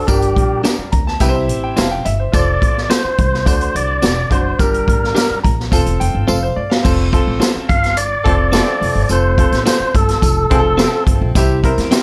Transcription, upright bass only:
0.08 0.31 G1 loud
0.36 0.59 A#1 medium
0.79 muted upright bass stroke soft
0.93 1.15 D2 medium
1.20 1.49 C2 loud
1.49 1.71 A1 medium
1.78 2.00 F1 medium
2.06 2.28 G1 medium
2.33 2.56 F1 loud
2.62 2.84 A1 medium
3.04 muted upright bass stroke soft
3.19 3.41 C2 loud
3.46 3.69 D2 loud
3.75 3.97 C2 medium
4.03 4.25 E1 medium
4.30 4.53 F#1 medium
4.59 4.81 G1 medium
4.88 5.10 A1 medium
5.30 muted upright bass stroke soft
5.45 5.66 A#1 medium
5.72 5.83 F1 loud
5.86 5.97 E1 medium
6.01 6.12 F1 medium
6.15 6.25 G1 medium
6.29 6.51 F1 medium
6.56 6.67 G1 medium
6.85 7.18 F1 loud
7.27 7.38 A1 medium
7.55 muted upright bass stroke soft
7.70 8.14 G1 medium
8.25 8.59 F1 medium
8.81 8.93 F1 medium
8.95 9.07 G1 medium
9.09 9.43 F1 medium
9.52 9.63 A1 medium
9.80 muted upright bass stroke soft
9.94 10.17 G1 loud
10.22 10.45 F1 loud
10.51 10.84 F1 loud
11.07 11.18 G1 medium
11.21 11.33 A#1 medium
11.35 11.69 C2 loud
11.78 11.89 E2 medium

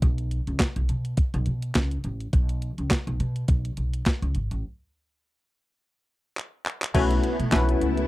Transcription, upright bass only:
0.02 0.38 B1 medium
0.47 0.58 C#2 medium
0.76 0.86 B1 loud
0.89 1.12 B2 medium
1.34 1.44 B1 loud
1.47 1.70 B2 medium
1.75 1.99 C#2 medium
2.04 2.27 A1 medium
2.33 2.69 B1 medium
2.78 2.88 C#2 medium
3.07 3.17 B1 medium
3.20 3.43 B2 medium
3.49 3.72 B1 medium
3.77 4.01 B1 medium
4.22 4.32 C#2 medium
4.35 4.48 G#1 medium
4.51 4.61 A1 medium
6.95 7.18 B1 loud
7.40 7.54 B2 medium
7.52 7.75 B1 loud
7.81 8.07 C#2 medium

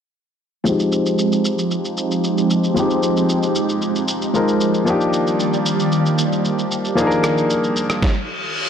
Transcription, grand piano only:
0.64 2.71 F3 medium
0.64 2.72 G#3 medium
0.64 2.73 C4 medium
0.64 2.73 D#4 medium
0.69 2.74 G4 medium
2.74 4.30 F3 medium
2.74 4.31 G#3 medium
2.74 4.31 C4 medium
2.74 4.32 D#4 medium
2.80 4.33 G4 medium
4.34 4.83 F3 medium
4.34 4.87 G#3 medium
4.34 4.87 C4 soft
4.34 4.87 D#4 soft
4.34 4.88 A#4 medium
4.85 6.92 F3 medium
4.85 6.93 A#3 medium
4.85 6.94 D4 medium
4.85 6.94 D#4 medium
4.90 6.95 G4 medium
6.95 7.99 F3 medium
6.95 8.00 A#3 medium
6.95 8.01 D4 medium
6.95 8.01 D#4 medium
7.01 7.05 G#4 medium
7.07 8.05 A#4 medium

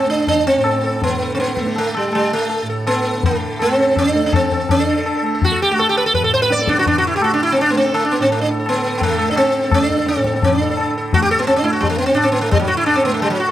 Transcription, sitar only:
0.10 0.27 D4 medium
0.28 0.46 D4 loud
0.47 1.03 C4 medium
0.65 0.82 A4 soft
0.84 1.01 A4 soft
1.04 1.34 B3 medium
1.22 1.39 A4 soft
1.35 1.39 C4 medium
1.40 1.78 B3 medium
1.59 1.75 A4 soft
1.78 1.96 A3 medium
1.97 2.14 G3 medium
2.15 2.33 G3 medium
2.33 2.67 A3 medium
2.70 2.85 A4 soft
2.87 3.25 B3 medium
2.87 3.04 A4 soft
3.07 3.23 A4 soft
3.26 3.61 A3 medium
3.60 3.98 C4 medium
3.60 3.77 A4 soft
3.79 3.96 A4 soft
3.97 4.25 D4 loud
3.97 4.14 A4 soft
4.16 4.32 A4 soft
4.26 4.33 D4 medium
4.34 4.70 C4 medium
4.34 4.51 A4 soft
4.52 4.69 A4 soft
4.71 5.21 D4 medium
4.80 4.87 A4 soft
4.89 4.97 A4 soft
4.98 5.05 A4 soft
5.06 5.16 A4 soft
5.17 5.25 A4 soft
5.26 5.33 A4 soft
5.35 5.51 A4 soft
5.45 5.62 F#4 loud
5.52 5.69 A4 soft
5.62 5.71 G4 medium
5.72 5.79 F#4 medium
5.79 5.89 A4 loud
5.89 5.97 G4 medium
5.97 6.06 B4 loud
6.06 6.14 A4 medium
6.15 6.24 B4 loud
6.24 6.33 A4 medium
6.34 6.42 C5 loud
6.42 6.51 B4 loud
6.52 6.68 D5 loud
6.61 6.78 A4 soft
6.69 6.78 D4 medium
6.79 6.87 F#4 loud
6.87 6.97 D4 medium
6.98 7.06 F#4 loud
7.07 7.15 E4 medium
7.16 7.24 G4 loud
7.24 7.33 F#4 medium
7.34 7.42 D4 medium
7.43 7.51 E4 medium
7.52 7.60 C4 medium
7.61 7.69 D4 loud
7.70 7.77 B3 medium
7.77 7.94 C4 medium
7.86 8.02 A4 soft
7.94 8.04 A3 medium
8.05 8.13 D4 medium
8.12 8.19 B3 medium
8.21 8.31 C4 medium
8.21 8.23 D4 medium
8.32 8.40 A3 medium
8.41 8.49 D4 medium
8.51 8.58 A4 soft
8.60 8.75 A4 soft
8.69 8.97 B3 medium
8.78 8.85 A4 soft
8.86 9.02 A4 soft
8.98 9.02 B3 medium
9.03 9.30 A3 medium
9.11 9.18 A4 soft
9.20 9.36 A4 soft
9.31 9.37 D4 medium
9.37 9.74 C4 loud
9.46 9.62 A4 soft
9.64 9.80 A4 soft
9.74 10.08 D4 loud
9.83 9.89 A4 soft
9.90 9.98 A4 soft
9.99 10.15 A4 soft
10.08 10.44 C4 loud
10.17 10.25 A4 soft
10.26 10.35 A4 soft
10.36 10.51 A4 soft
10.44 10.93 D4 medium
10.62 10.69 A4 soft
10.70 10.78 A4 soft
10.80 10.95 A4 soft
10.98 11.13 A4 soft
11.14 11.22 F#4 loud
11.22 11.31 G4 loud
11.31 11.40 A4 loud
11.39 11.47 B3 loud
11.47 11.56 C4 loud
11.56 11.66 D4 medium
11.64 11.72 E4 loud
11.73 11.82 F#4 medium
11.81 11.89 G3 medium
11.90 11.98 A3 medium
11.98 12.06 B3 medium
12.06 12.17 C4 medium
12.14 12.25 D4 loud
12.23 12.31 C4 medium
12.32 12.41 B3 medium
12.41 12.51 A3 medium
12.51 12.59 G3 loud
12.60 12.69 F#3 medium
12.68 12.77 F#4 medium
12.77 12.86 E4 loud
12.86 12.96 D4 loud
12.96 13.05 C4 medium
13.05 13.14 B3 medium
13.14 13.22 A3 medium
13.22 13.30 G3 medium
13.30 13.38 F#3 medium
13.40 13.47 F#4 medium
13.48 13.52 A4 soft

